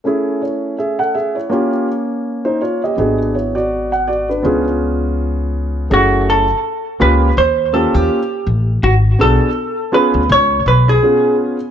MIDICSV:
0, 0, Header, 1, 4, 480
1, 0, Start_track
1, 0, Key_signature, 3, "minor"
1, 0, Tempo, 731707
1, 34, Time_signature, 4, 2, 24, 8
1, 7681, End_track
2, 0, Start_track
2, 0, Title_t, "Hollow-body jazz guitar"
2, 0, Program_c, 0, 26
2, 3894, Note_on_c, 0, 66, 77
2, 4129, Note_off_c, 0, 66, 0
2, 4131, Note_on_c, 0, 69, 89
2, 4577, Note_off_c, 0, 69, 0
2, 4603, Note_on_c, 0, 71, 81
2, 4839, Note_off_c, 0, 71, 0
2, 4842, Note_on_c, 0, 72, 97
2, 5076, Note_on_c, 0, 69, 70
2, 5085, Note_off_c, 0, 72, 0
2, 5213, Note_off_c, 0, 69, 0
2, 5213, Note_on_c, 0, 67, 81
2, 5555, Note_off_c, 0, 67, 0
2, 5798, Note_on_c, 0, 66, 79
2, 5862, Note_off_c, 0, 66, 0
2, 6042, Note_on_c, 0, 69, 91
2, 6523, Note_on_c, 0, 71, 81
2, 6533, Note_off_c, 0, 69, 0
2, 6742, Note_off_c, 0, 71, 0
2, 6770, Note_on_c, 0, 73, 110
2, 7002, Note_off_c, 0, 73, 0
2, 7004, Note_on_c, 0, 71, 79
2, 7140, Note_off_c, 0, 71, 0
2, 7146, Note_on_c, 0, 68, 82
2, 7458, Note_off_c, 0, 68, 0
2, 7681, End_track
3, 0, Start_track
3, 0, Title_t, "Grand piano"
3, 0, Program_c, 1, 0
3, 26, Note_on_c, 1, 57, 56
3, 32, Note_on_c, 1, 61, 54
3, 42, Note_on_c, 1, 64, 56
3, 47, Note_on_c, 1, 68, 64
3, 268, Note_off_c, 1, 64, 0
3, 273, Note_on_c, 1, 73, 45
3, 276, Note_off_c, 1, 68, 0
3, 278, Note_on_c, 1, 64, 39
3, 501, Note_off_c, 1, 73, 0
3, 504, Note_off_c, 1, 64, 0
3, 515, Note_on_c, 1, 76, 58
3, 520, Note_on_c, 1, 68, 51
3, 645, Note_off_c, 1, 76, 0
3, 648, Note_off_c, 1, 68, 0
3, 649, Note_on_c, 1, 69, 50
3, 649, Note_on_c, 1, 78, 67
3, 748, Note_off_c, 1, 69, 0
3, 748, Note_off_c, 1, 78, 0
3, 751, Note_on_c, 1, 76, 63
3, 756, Note_on_c, 1, 68, 48
3, 883, Note_off_c, 1, 76, 0
3, 885, Note_on_c, 1, 73, 47
3, 886, Note_off_c, 1, 68, 0
3, 888, Note_on_c, 1, 64, 38
3, 971, Note_off_c, 1, 57, 0
3, 974, Note_off_c, 1, 61, 0
3, 980, Note_on_c, 1, 58, 61
3, 985, Note_on_c, 1, 61, 58
3, 993, Note_on_c, 1, 65, 58
3, 1000, Note_on_c, 1, 67, 58
3, 1116, Note_off_c, 1, 73, 0
3, 1118, Note_off_c, 1, 64, 0
3, 1229, Note_off_c, 1, 65, 0
3, 1232, Note_off_c, 1, 67, 0
3, 1606, Note_on_c, 1, 72, 62
3, 1611, Note_on_c, 1, 63, 53
3, 1706, Note_off_c, 1, 72, 0
3, 1709, Note_off_c, 1, 63, 0
3, 1715, Note_on_c, 1, 73, 59
3, 1717, Note_on_c, 1, 65, 49
3, 1845, Note_off_c, 1, 73, 0
3, 1846, Note_off_c, 1, 65, 0
3, 1861, Note_on_c, 1, 75, 56
3, 1865, Note_on_c, 1, 67, 51
3, 1928, Note_off_c, 1, 58, 0
3, 1930, Note_off_c, 1, 61, 0
3, 1945, Note_on_c, 1, 59, 54
3, 1953, Note_on_c, 1, 62, 50
3, 1961, Note_on_c, 1, 66, 51
3, 1967, Note_on_c, 1, 68, 69
3, 2084, Note_off_c, 1, 75, 0
3, 2086, Note_off_c, 1, 67, 0
3, 2189, Note_off_c, 1, 62, 0
3, 2193, Note_off_c, 1, 66, 0
3, 2193, Note_on_c, 1, 73, 48
3, 2196, Note_off_c, 1, 68, 0
3, 2198, Note_on_c, 1, 64, 41
3, 2324, Note_off_c, 1, 73, 0
3, 2327, Note_off_c, 1, 64, 0
3, 2329, Note_on_c, 1, 74, 60
3, 2332, Note_on_c, 1, 66, 57
3, 2558, Note_off_c, 1, 74, 0
3, 2560, Note_off_c, 1, 66, 0
3, 2572, Note_on_c, 1, 78, 60
3, 2669, Note_off_c, 1, 78, 0
3, 2674, Note_on_c, 1, 74, 61
3, 2679, Note_on_c, 1, 66, 54
3, 2804, Note_off_c, 1, 74, 0
3, 2807, Note_off_c, 1, 66, 0
3, 2817, Note_on_c, 1, 62, 42
3, 2817, Note_on_c, 1, 71, 54
3, 2890, Note_off_c, 1, 59, 0
3, 2903, Note_on_c, 1, 59, 60
3, 2909, Note_on_c, 1, 61, 58
3, 2915, Note_on_c, 1, 65, 54
3, 2925, Note_on_c, 1, 68, 68
3, 3042, Note_off_c, 1, 62, 0
3, 3042, Note_off_c, 1, 71, 0
3, 3849, Note_off_c, 1, 59, 0
3, 3852, Note_off_c, 1, 61, 0
3, 3855, Note_off_c, 1, 65, 0
3, 3860, Note_off_c, 1, 68, 0
3, 3872, Note_on_c, 1, 57, 55
3, 3875, Note_on_c, 1, 61, 47
3, 3882, Note_on_c, 1, 68, 60
3, 3883, Note_on_c, 1, 64, 49
3, 4223, Note_off_c, 1, 57, 0
3, 4224, Note_off_c, 1, 61, 0
3, 4228, Note_off_c, 1, 64, 0
3, 4228, Note_off_c, 1, 68, 0
3, 4590, Note_on_c, 1, 58, 72
3, 4590, Note_on_c, 1, 61, 60
3, 4593, Note_on_c, 1, 65, 63
3, 4598, Note_on_c, 1, 67, 74
3, 4770, Note_off_c, 1, 58, 0
3, 4771, Note_off_c, 1, 61, 0
3, 4772, Note_off_c, 1, 65, 0
3, 4775, Note_off_c, 1, 67, 0
3, 5070, Note_on_c, 1, 58, 56
3, 5071, Note_on_c, 1, 61, 51
3, 5079, Note_on_c, 1, 65, 55
3, 5080, Note_on_c, 1, 67, 62
3, 5367, Note_off_c, 1, 58, 0
3, 5367, Note_off_c, 1, 61, 0
3, 5372, Note_off_c, 1, 65, 0
3, 5372, Note_off_c, 1, 67, 0
3, 6027, Note_on_c, 1, 59, 60
3, 6028, Note_on_c, 1, 62, 54
3, 6031, Note_on_c, 1, 66, 54
3, 6036, Note_on_c, 1, 68, 67
3, 6209, Note_off_c, 1, 59, 0
3, 6209, Note_off_c, 1, 62, 0
3, 6211, Note_off_c, 1, 66, 0
3, 6214, Note_off_c, 1, 68, 0
3, 6508, Note_on_c, 1, 59, 68
3, 6512, Note_on_c, 1, 65, 70
3, 6513, Note_on_c, 1, 61, 63
3, 6516, Note_on_c, 1, 68, 73
3, 6689, Note_off_c, 1, 59, 0
3, 6691, Note_off_c, 1, 65, 0
3, 6692, Note_off_c, 1, 61, 0
3, 6693, Note_off_c, 1, 68, 0
3, 7232, Note_on_c, 1, 59, 53
3, 7234, Note_on_c, 1, 61, 47
3, 7238, Note_on_c, 1, 65, 48
3, 7240, Note_on_c, 1, 68, 60
3, 7583, Note_off_c, 1, 59, 0
3, 7584, Note_off_c, 1, 61, 0
3, 7586, Note_off_c, 1, 65, 0
3, 7587, Note_off_c, 1, 68, 0
3, 7681, End_track
4, 0, Start_track
4, 0, Title_t, "Upright bass"
4, 0, Program_c, 2, 32
4, 1955, Note_on_c, 2, 32, 63
4, 2888, Note_off_c, 2, 32, 0
4, 2917, Note_on_c, 2, 37, 75
4, 3849, Note_off_c, 2, 37, 0
4, 3877, Note_on_c, 2, 30, 87
4, 4264, Note_off_c, 2, 30, 0
4, 4598, Note_on_c, 2, 37, 90
4, 4790, Note_off_c, 2, 37, 0
4, 4835, Note_on_c, 2, 39, 87
4, 5140, Note_off_c, 2, 39, 0
4, 5211, Note_on_c, 2, 39, 87
4, 5295, Note_off_c, 2, 39, 0
4, 5554, Note_on_c, 2, 33, 78
4, 5748, Note_off_c, 2, 33, 0
4, 5793, Note_on_c, 2, 32, 98
4, 5988, Note_off_c, 2, 32, 0
4, 6031, Note_on_c, 2, 35, 76
4, 6143, Note_off_c, 2, 35, 0
4, 6652, Note_on_c, 2, 38, 85
4, 6735, Note_off_c, 2, 38, 0
4, 6753, Note_on_c, 2, 37, 96
4, 6948, Note_off_c, 2, 37, 0
4, 6993, Note_on_c, 2, 35, 81
4, 7187, Note_off_c, 2, 35, 0
4, 7681, End_track
0, 0, End_of_file